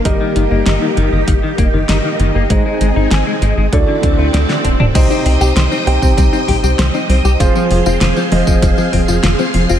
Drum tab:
CC |----------------|----------------|x---------------|----------------|
HH |x-x-x-x-x-x-x-x-|x-x-x-x-x-x-x-x-|x-o-x-o-x-o-x-o-|x-o-x-o-x-o-x-o-|
TB |----------------|----------------|xx-xxx-xxx-xxx-x|xx-xxx-xxx-xxx-x|
SD |----o-------o---|----o-------oo--|----o-------o---|----o-------o---|
T2 |----------------|---------------o|----------------|----------------|
BD |o-------o-o-----|o-------o-o---o-|o------oo-o-----|o------oo-o-----|